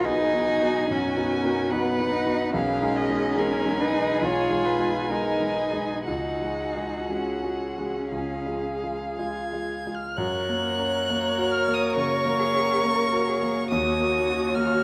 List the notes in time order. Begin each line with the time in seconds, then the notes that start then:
Already playing: B1 B3 D#4 F#4
0.05 B3 D#4 F#4 G#4 B4 G#5
0.34 B3 D#4 F#4
0.49 F#4 G#4
0.62 B3 D#4 F#4
0.90 F#2 C#4 F#4
1.17 B3 D#4 F#4
1.32 A#4
1.45 B3 D#4 F#4
1.70 B3 D#4 F#4 B4 F#5
1.99 B3 D#4 F#4
2.12 D#4
2.26 B3 D#4 F#4
2.54 B1 C#4 G#4 A#4 F5
2.82 G#3 D#4 G#4
2.96 D#5
3.09 G#3 D#4 G#4
3.37 G#3 D#4 G#4 A#4 G#5
3.65 G#3 D#4 G#4
3.81 D#4 B4
3.93 G#3 D#4 G#4
4.21 B1 F4 C#5 G#5
4.50 G#3 D#4 G#4
4.66 B4
4.79 G#3 D#4 G#4
5.09 G#3 D#4 G#4 A#4 B4
5.40 G#3 D#4 G#4
5.56 G#4
5.73 G#3 D#4 G#4
6.06 C#2 D#4 F#4 G#4 F#5
6.41 G#3 F#4 G#4
6.76 G#3 F#4 G#4
7.09 G#3 C#4 F#4 G#4
7.43 G#3 F#4 G#4
7.78 G#3 F#4 G#4
8.12 C#2 G#4 F5
8.46 G#3 F4 G#4
8.84 G#3 F4 G#4
9.18 G#3 F4 G#4 G#6
9.53 G#3 F4 G#4
9.87 G#3 F4 G#4
9.95 F6
10.17 F#2 A#4 C#5 F#6
10.49 A#3
10.79 C#4
11.10 A#3
11.38 F#4
11.52 F6
11.68 A#3
11.74 D#6
11.96 C#3 A#4 C#6
12.25 A#3
12.39 G#4
12.54 C#4
12.83 A#3 A#4
13.13 F#4
13.28 G#4
13.43 A#3
13.70 D#2 F#4 C#5 D#6
14.00 A#3
14.28 C#4
14.55 A#3 F6